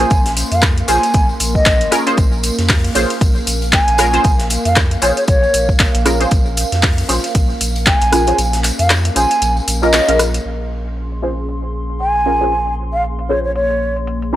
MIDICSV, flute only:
0, 0, Header, 1, 2, 480
1, 0, Start_track
1, 0, Key_signature, -5, "minor"
1, 0, Tempo, 517241
1, 100, Time_signature, 4, 2, 24, 8
1, 13328, End_track
2, 0, Start_track
2, 0, Title_t, "Flute"
2, 0, Program_c, 0, 73
2, 0, Note_on_c, 0, 80, 102
2, 300, Note_off_c, 0, 80, 0
2, 479, Note_on_c, 0, 77, 88
2, 571, Note_off_c, 0, 77, 0
2, 820, Note_on_c, 0, 80, 100
2, 1199, Note_off_c, 0, 80, 0
2, 1439, Note_on_c, 0, 75, 95
2, 1781, Note_off_c, 0, 75, 0
2, 3461, Note_on_c, 0, 80, 101
2, 4140, Note_off_c, 0, 80, 0
2, 4319, Note_on_c, 0, 77, 90
2, 4411, Note_off_c, 0, 77, 0
2, 4661, Note_on_c, 0, 73, 92
2, 4750, Note_off_c, 0, 73, 0
2, 4800, Note_on_c, 0, 73, 78
2, 4864, Note_off_c, 0, 73, 0
2, 4901, Note_on_c, 0, 73, 93
2, 5279, Note_off_c, 0, 73, 0
2, 7301, Note_on_c, 0, 80, 99
2, 7980, Note_off_c, 0, 80, 0
2, 8160, Note_on_c, 0, 77, 91
2, 8251, Note_off_c, 0, 77, 0
2, 8501, Note_on_c, 0, 80, 102
2, 8879, Note_off_c, 0, 80, 0
2, 9119, Note_on_c, 0, 75, 94
2, 9461, Note_off_c, 0, 75, 0
2, 11140, Note_on_c, 0, 80, 95
2, 11820, Note_off_c, 0, 80, 0
2, 11999, Note_on_c, 0, 77, 90
2, 12091, Note_off_c, 0, 77, 0
2, 12340, Note_on_c, 0, 73, 88
2, 12429, Note_off_c, 0, 73, 0
2, 12478, Note_on_c, 0, 73, 75
2, 12544, Note_off_c, 0, 73, 0
2, 12580, Note_on_c, 0, 73, 86
2, 12959, Note_off_c, 0, 73, 0
2, 13328, End_track
0, 0, End_of_file